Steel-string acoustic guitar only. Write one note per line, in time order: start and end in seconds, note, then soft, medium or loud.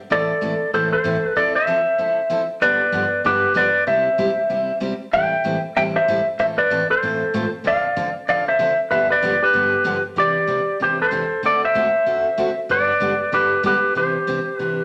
0.10 0.30 A2 medium
0.10 0.30 E3 medium
0.10 0.31 A3 medium
0.10 0.31 C4 medium
0.10 0.31 E4 medium
0.10 0.31 A4 medium
0.41 0.52 A2 medium
0.41 0.53 E3 medium
0.41 0.53 A3 medium
0.41 0.53 C4 medium
0.41 0.53 E4 medium
0.41 0.53 A4 medium
0.74 0.94 A2 medium
0.74 0.94 E3 medium
0.74 0.94 A3 medium
0.74 0.94 C4 medium
0.74 0.94 E4 medium
0.74 0.94 A4 medium
1.04 1.15 A2 medium
1.04 1.15 E3 medium
1.04 1.16 A3 medium
1.04 1.16 C4 medium
1.04 1.16 E4 medium
1.04 1.16 A4 medium
1.36 1.56 F3 medium
1.36 1.57 C4 medium
1.36 1.57 E4 medium
1.36 1.57 A4 medium
1.67 1.78 F3 medium
1.67 1.78 C4 medium
1.67 1.79 E4 medium
1.67 1.79 A4 medium
1.98 2.19 F3 medium
1.98 2.19 C4 medium
1.98 2.19 E4 medium
1.98 2.19 A4 medium
2.30 2.41 F3 medium
2.30 2.41 C4 medium
2.30 2.41 E4 medium
2.30 2.42 A4 medium
2.61 2.82 G2 medium
2.61 2.82 D3 medium
2.61 2.82 F3 medium
2.61 2.82 B3 medium
2.61 2.82 D4 medium
2.61 2.82 G4 medium
2.92 3.04 G2 medium
2.92 3.04 D3 medium
2.92 3.04 F3 medium
2.92 3.04 B3 medium
2.92 3.04 D4 medium
2.92 3.04 G4 medium
3.24 3.45 G2 medium
3.24 3.45 D3 medium
3.24 3.45 F3 medium
3.24 3.45 B3 medium
3.24 3.45 D4 medium
3.24 3.45 G4 medium
3.54 3.66 G2 medium
3.54 3.66 D3 medium
3.54 3.67 F3 medium
3.54 3.67 B3 medium
3.54 3.67 D4 medium
3.54 3.67 G4 medium
3.87 4.07 C3 medium
3.87 4.07 G3 medium
3.87 4.08 C4 medium
3.87 4.08 E4 medium
3.87 4.08 G4 medium
4.18 4.29 C3 medium
4.18 4.30 G3 medium
4.18 4.30 C4 medium
4.18 4.30 E4 medium
4.18 4.30 G4 medium
4.49 4.70 C3 medium
4.49 4.70 G3 medium
4.49 4.70 C4 medium
4.49 4.71 E4 medium
4.49 4.71 G4 medium
4.80 4.92 C3 medium
4.80 4.92 G3 medium
4.80 4.92 C4 medium
4.80 4.93 E4 medium
4.80 4.93 G4 medium
5.13 5.33 A2 medium
5.13 5.33 E3 medium
5.13 5.34 G3 medium
5.13 5.34 C4 medium
5.13 5.33 E4 medium
5.13 5.34 A4 medium
5.44 5.55 A2 medium
5.44 5.56 E3 medium
5.44 5.56 G3 medium
5.44 5.56 C4 medium
5.44 5.56 E4 medium
5.44 5.56 A4 medium
5.76 5.96 A2 medium
5.76 5.97 E3 medium
5.76 5.97 G3 medium
5.76 5.97 C4 medium
5.76 5.97 E4 medium
5.76 5.97 A4 medium
6.08 6.19 A2 medium
6.08 6.19 E3 medium
6.08 6.19 G3 medium
6.08 6.19 C4 medium
6.08 6.19 E4 medium
6.08 6.19 A4 medium
6.39 6.59 A2 medium
6.39 6.59 E3 medium
6.39 6.59 A3 medium
6.39 6.59 C4 medium
6.39 6.60 F4 medium
6.39 6.59 A4 medium
6.70 6.81 A2 medium
6.70 6.82 E3 medium
6.70 6.82 A3 medium
6.70 6.82 C4 medium
6.70 6.82 F4 medium
6.70 6.82 A4 medium
7.03 7.22 A2 medium
7.03 7.22 E3 medium
7.03 7.23 A3 medium
7.03 7.23 C4 medium
7.03 7.23 F4 medium
7.03 7.23 A4 medium
7.34 7.44 A2 medium
7.34 7.45 E3 medium
7.34 7.45 A3 medium
7.34 7.45 C4 medium
7.34 7.45 F4 medium
7.34 7.45 A4 medium
7.64 7.84 D3 medium
7.64 7.85 F3 medium
7.64 7.85 C4 medium
7.64 7.85 D4 medium
7.64 7.85 A4 medium
7.96 8.07 D3 medium
7.96 8.07 F3 medium
7.96 8.07 C4 medium
7.96 8.07 D4 medium
7.96 8.07 A4 medium
8.28 8.48 D3 medium
8.28 8.48 F3 medium
8.28 8.48 C4 medium
8.28 8.48 D4 medium
8.28 8.49 A4 medium
8.59 8.70 D3 medium
8.59 8.70 F3 medium
8.59 8.70 C4 medium
8.59 8.70 D4 medium
8.59 8.70 A4 medium
8.91 9.11 G2 medium
8.91 9.11 D3 medium
8.91 9.11 F3 medium
8.91 9.11 B3 medium
8.91 9.11 D4 medium
8.91 9.11 G4 medium
9.22 9.33 G2 medium
9.22 9.33 D3 medium
9.22 9.33 F3 medium
9.22 9.34 B3 medium
9.22 9.34 D4 medium
9.22 9.34 G4 medium
9.53 9.74 G2 medium
9.53 9.74 D3 medium
9.53 9.74 F3 medium
9.53 9.74 B3 medium
9.53 9.74 D4 medium
9.53 9.74 G4 medium
9.84 9.96 G2 medium
9.84 9.96 D3 medium
9.84 9.96 F3 medium
9.84 9.96 B3 medium
9.84 9.96 D4 medium
9.84 9.96 G4 medium
10.16 10.37 C3 medium
10.16 10.37 E3 medium
10.16 10.37 C4 medium
10.16 10.37 D4 medium
10.47 10.59 C3 medium
10.47 10.59 E3 medium
10.47 10.59 C4 medium
10.47 10.59 D4 medium
10.80 11.00 C3 medium
10.80 11.00 E3 medium
10.80 11.01 C4 medium
10.80 11.01 D4 medium
11.11 11.22 C3 medium
11.11 11.23 E3 medium
11.11 11.23 C4 medium
11.11 11.23 D4 medium
11.43 11.63 D3 medium
11.43 11.63 A3 medium
11.43 11.63 C4 medium
11.43 11.63 F#4 medium
11.43 11.64 A4 medium
11.74 11.86 D3 medium
11.74 11.86 A3 medium
11.74 11.86 C4 medium
11.74 11.86 F#4 medium
11.74 11.87 A4 medium
12.06 12.27 D3 medium
12.06 12.27 A3 medium
12.06 12.27 C4 medium
12.06 12.27 F#4 medium
12.06 12.27 A4 medium
12.37 12.49 D3 medium
12.37 12.49 A3 medium
12.37 12.49 C4 medium
12.37 12.49 F#4 medium
12.37 12.49 A4 medium
12.69 12.90 G2 medium
12.69 12.90 D3 medium
12.69 12.90 G3 medium
12.69 12.90 B3 medium
12.69 12.90 D4 medium
12.69 12.90 G4 medium
13.00 13.12 G2 medium
13.00 13.12 D3 medium
13.00 13.12 G3 medium
13.00 13.12 B3 medium
13.00 13.12 D4 medium
13.00 13.13 G4 medium
13.32 13.53 G2 medium
13.32 13.53 D3 medium
13.32 13.53 G3 medium
13.32 13.53 B3 medium
13.32 13.53 D4 medium
13.32 13.53 G4 medium
13.63 13.75 G2 medium
13.63 13.75 D3 medium
13.63 13.75 G3 medium
13.63 13.75 B3 medium
13.63 13.75 D4 medium
13.63 13.75 G4 medium
13.95 14.16 C3 medium
13.95 14.16 E3 medium
13.95 14.16 C4 medium
13.95 14.16 D4 medium
14.27 14.38 C3 medium
14.27 14.39 E3 medium
14.27 14.39 C4 medium
14.27 14.39 D4 medium
14.59 14.80 C3 medium
14.59 14.80 E3 medium
14.59 14.80 C4 medium
14.59 14.80 D4 medium